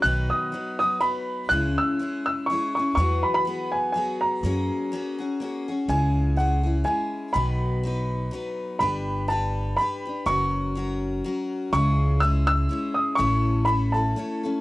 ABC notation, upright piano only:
X:1
M:3/4
L:1/16
Q:"Swing" 1/4=123
K:C#dor
V:1 name="Upright piano"
f'2 d'4 d'2 b4 | f'2 e'4 e'2 c'2 c'2 | c'2 b b3 g2 g2 a2- | a8- a2 z2 |
g4 f4 g4 | b8- b2 z2 | b4 =a4 b4 | c'8- c'2 z2 |
c'4 e'2 e'4 d'2 | c'4 b2 =a4 z2 |]